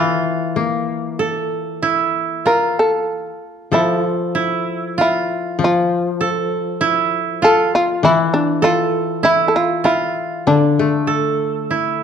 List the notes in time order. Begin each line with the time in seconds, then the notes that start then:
Already playing: E3 E4 F4 A4
0.56 A#3
1.19 A4
1.82 E4
2.46 F4 A#4
2.79 A4
3.72 F3 E4 A4
4.03 F4
4.35 E4
4.98 E4 F4
5.59 F3
5.64 F4
6.21 A4
6.81 E4
7.42 F4 A4
7.75 F4
8.03 E3 E4
8.34 D4
8.62 F4 A4
9.23 E4
9.48 A4
9.56 F4
9.84 E4 F4
10.47 D3 D4
10.79 A3
11.07 A4
11.71 E4